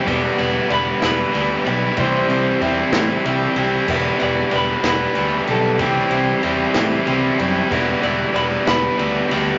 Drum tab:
CC |------|------|x-----|------|
RD |xxxxxx|xxxxxx|-xxxxx|xxxxxx|
SD |---o--|---o--|---o--|---o--|
BD |o-----|o-o---|o-----|o-----|

CC |------|
RD |xxxxxx|
SD |---o--|
BD |o-----|